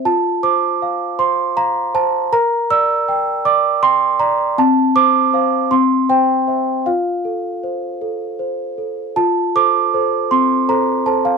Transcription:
\new Staff \with { instrumentName = "Celesta" } { \time 6/8 \key f \major \tempo 4. = 53 << { a''8 d'''4 c'''8 bes''8 a''8 | bes''8 e'''4 d'''8 c'''8 bes''8 | a''8 d'''4 c'''8 g''4 | f''4. r4. |
a''8 d'''4 c'''8 bes''8 a''16 f''16 | } \\ { f'8 c''8 f''8 c''8 f''8 c''8 | bes'8 d''8 g''8 d''8 g''8 d''8 | c'8 c''8 <c'' f''>8 c'8 c''8 <c'' e''>8 | f'8 a'8 c''8 a'8 c''8 a'8 |
f'8 <a' c''>8 <a' c''>8 c'8 <a' c''>8 <a' c''>8 | } >> }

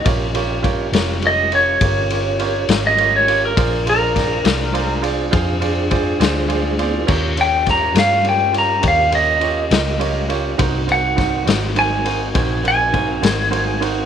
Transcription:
<<
  \new Staff \with { instrumentName = "Electric slide guitar" } { \time 12/8 \key ees \mixolydian \tempo 4. = 68 r2 ees''8 des''2~ des''16 ees''8 des''8 bes'16~ | bes'8 bes'2 r2. r8 | r8 g''8 bes''8 f''8 g''8 bes''8 f''8 ees''2 r8 | r8 ges''4. aes''4. aes''2 r8 | }
  \new Staff \with { instrumentName = "Grand piano" } { \time 12/8 \key ees \mixolydian << { r1. | r1. | r1. | r1 r4 c'''16 aes''16 ges''8 | } \\ { <f' g' bes' des''>8 <f' g' bes' des''>8 <f' g' bes' des''>8 <f' g' bes' des''>8 <f' g' bes' des''>8 <f' g' bes' des''>8 <f' g' bes' des''>8 <f' g' bes' des''>8 <f' g' bes' des''>8 <f' g' bes' des''>8 <f' g' bes' des''>8 <f' g' bes' des''>8 | <f' aes' c'' d''>8 <f' aes' c'' d''>8 <f' aes' c'' d''>8 <f' aes' c'' d''>8 <f' aes' c'' d''>8 <f' aes' c'' d''>8 <f' aes' c'' f''>8 <f' aes' c'' d''>8 <f' aes' c'' d''>8 <f' aes' c'' d''>8 <f' aes' c'' d''>8 <f' aes' c'' d''>8 | <f' g' bes' des''>8 <f' g' bes' des''>8 <f' g' bes' des''>8 <f' g' bes' des''>8 <f' g' bes' des''>8 <f' g' bes' des''>8 <f' g' bes' des''>8 <f' g' bes' des''>8 <f' g' bes' des''>8 <f' g' bes' ees''>8 <f' g' bes' des''>8 <f' g' bes' des''>8 | <ees' ges' bes' c''>8 <ees' ges' bes' c''>8 <ees' ges' bes' c''>8 <ees' ges' bes' c''>8 <ees' ges' bes' c''>8 <ees' ges' bes' c''>8 <ees' ges' bes' c''>8 <ees' ges' bes' c''>8 <ees' ges' bes' c''>8 <ees' ges' bes' c''>8 <ees' ges' bes' c''>8 <ees' ges' bes' c''>8 | } >> }
  \new Staff \with { instrumentName = "Tonewheel organ" } { \time 12/8 \key ees \mixolydian << { <des' f' g' bes'>1. | <d' f' aes' c''>1. | <des' f' g' bes'>1. | <c' ees' ges' bes'>1. | } \\ { r1. | r1. | <a ces' c' d' fes' f' g' a' ces'' c'' d''>8 r1 r4. | r1. | } >> }
  \new Staff \with { instrumentName = "Fingered electric bass" } { \clef bass \time 12/8 \key ees \mixolydian bes,,4. f,,4. g,,4. aes,,4. | bes,,4. c,4. f,4. d,4. | ees,4. g,4. ees,4. des,4. | c,4. aes,,4. bes,,4. aes,,4. | }
  \new DrumStaff \with { instrumentName = "Drums" } \drummode { \time 12/8 <bd cymr>8 cymr8 <bd cymr>8 <cymr sn>8 cymr8 cymr8 <bd cymr>8 cymr8 cymr8 <cymr sn>8 cymr8 cymr8 | <bd cymr>8 cymr8 <bd cymr sn>8 <cymr sn>8 cymr8 cymr8 <bd cymr>8 cymr8 <bd cymr>8 <cymr sn>8 cymr8 cymr8 | <cymc bd>8 cymr8 <bd cymr sn>8 <cymr sn>8 cymr8 cymr8 <bd cymr>8 cymr8 cymr8 <cymr sn>8 cymr8 cymr8 | <bd cymr>8 cymr8 <bd cymr sn>8 <cymr sn>8 cymr8 cymr8 <bd cymr>8 cymr8 <bd cymr>8 <cymr sn>8 cymr8 cymr8 | }
>>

